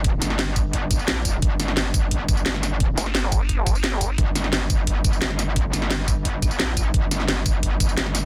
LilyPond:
<<
  \new Staff \with { instrumentName = "Wobble bass" } { \clef bass \time 4/4 \key g \minor \tempo 4 = 174 g,,8 g,,2~ g,,8 bes,,4 | g,,2~ g,,8 g,,8 g,,4~ | g,,8 r2. r8 | g,,2~ g,,8 g,,8 g,,4~ |
g,,8 g,,2~ g,,8 bes,,4 | g,,2~ g,,8 g,,8 g,,4 | }
  \new Staff \with { instrumentName = "Wobble bass" } { \clef bass \time 4/4 \key g \minor r1 | r1 | r8 g,,2.~ g,,8 | r1 |
r1 | r1 | }
  \new DrumStaff \with { instrumentName = "Drums" } \drummode { \time 4/4 <hh bd>8 <hh sn tamb>16 sn16 <hh sn>8 <hh bd tamb>8 <hh bd>8 <hh bd tamb>16 tamb16 <hh sn>8 <hh bd tamb>8 | <hh bd>8 <hh sn tamb>16 sn16 <hh sn>8 <hh bd tamb>8 <hh bd>8 <hh bd tamb>16 tamb16 <hh sn>16 sn16 <hh sn tamb>8 | <hh bd>8 <hh sn tamb>16 sn16 <hh sn>8 <hh bd tamb>8 <hh bd>8 <hh bd tamb>16 tamb16 <hh sn>8 <hh bd tamb>8 | <hh bd>8 <hh sn tamb>16 sn16 <hh sn>8 <hh bd tamb>8 <hh bd>8 <hh bd tamb>16 tamb16 <hh sn>16 sn16 <hh sn tamb>8 |
<hh bd>8 <hh sn tamb>16 sn16 <hh sn>8 <hh bd tamb>8 <hh bd>8 <hh bd tamb>16 tamb16 <hh sn>8 <hh bd tamb>8 | <hh bd>8 <hh sn tamb>16 sn16 <hh sn>8 <hh bd tamb>8 <hh bd>8 <hh bd tamb>16 tamb16 <hh sn>16 sn16 <hh sn tamb>8 | }
>>